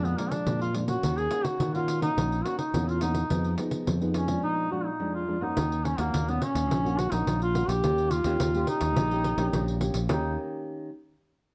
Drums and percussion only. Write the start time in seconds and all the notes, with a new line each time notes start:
0.05 pandeiro
0.18 pandeiro
0.31 pandeiro
0.47 pandeiro
0.61 pandeiro
0.75 pandeiro
0.88 pandeiro
1.03 pandeiro
1.18 pandeiro
1.31 pandeiro
1.45 pandeiro
1.60 pandeiro
1.75 pandeiro
1.88 pandeiro
2.02 pandeiro
2.18 pandeiro
2.32 pandeiro
2.46 pandeiro
2.59 pandeiro
2.74 pandeiro
2.89 pandeiro
3.01 pandeiro
3.15 pandeiro
3.30 pandeiro
3.44 pandeiro
3.58 pandeiro
3.71 pandeiro
3.87 pandeiro
4.02 pandeiro
4.14 pandeiro
4.28 pandeiro
5.57 pandeiro
5.72 pandeiro
5.85 pandeiro
5.98 pandeiro
6.14 pandeiro
6.28 pandeiro
6.42 pandeiro
6.55 pandeiro
6.71 pandeiro
6.86 pandeiro
6.99 pandeiro
7.12 pandeiro
7.27 pandeiro
7.42 pandeiro
7.55 pandeiro
7.69 pandeiro
7.84 pandeiro
7.98 pandeiro
8.11 pandeiro
8.24 pandeiro
8.40 pandeiro
8.54 pandeiro
8.67 pandeiro
8.81 pandeiro
8.96 pandeiro
9.11 pandeiro
9.24 pandeiro
9.38 pandeiro
9.53 pandeiro
9.68 pandeiro
9.81 pandeiro
9.94 pandeiro
10.09 pandeiro